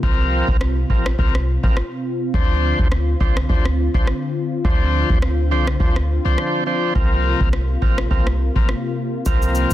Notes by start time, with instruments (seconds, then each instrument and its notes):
Already playing: analog synth pad C3 F4
0.03 808-style bass C2, tonewheel organ F3 C4 A#4, analog synth pad C4, kick
0.48 808-style bass C2, kick
0.61 cross-stick
0.90 808-style bass A#1, tonewheel organ F3 C4 A#4, kick
1.06 cross-stick
1.19 808-style bass C2, tonewheel organ F3 C4 A#4, kick
1.35 cross-stick
1.63 808-style bass A#1, tonewheel organ F3 C4 A#4, kick
1.77 cross-stick
2.34 808-style bass D2, analog synth pad D3, tonewheel organ F3 D4 C5, kick
2.79 808-style bass D2, kick
2.92 cross-stick
3.20 808-style bass C2, tonewheel organ F3 D4 C5, kick
3.37 cross-stick
3.49 808-style bass D2, tonewheel organ F3 D4 C5, kick
3.65 cross-stick
3.94 808-style bass C2, tonewheel organ F3 D4 C5, kick
4.07 cross-stick
4.65 808-style bass D2, tonewheel organ F3 D4 C5, kick
5.10 808-style bass D2, kick
5.22 cross-stick
5.51 808-style bass C2, tonewheel organ F3 D4 C5
5.67 cross-stick
5.80 808-style bass D2, tonewheel organ F3 D4 C5, kick
5.96 cross-stick
6.25 808-style bass C2, tonewheel organ F3 D4 C5
6.38 cross-stick
6.66 tonewheel organ F3 D4 C5
6.95 808-style bass C2, analog synth pad C3 A#3, tonewheel organ F3 C4 A#4, kick
7.41 808-style bass C2, kick
7.53 cross-stick
7.82 808-style bass A#1, tonewheel organ F3 C4 A#4, kick
7.98 cross-stick
8.11 808-style bass C2, tonewheel organ F3 C4 A#4, kick
8.27 cross-stick
8.56 808-style bass A#1, tonewheel organ F3 C4 A#4, kick
8.69 cross-stick
9.26 808-style bass C2, tonewheel organ F3 C4 A#4, kick, shaker
9.42 shaker
9.55 shaker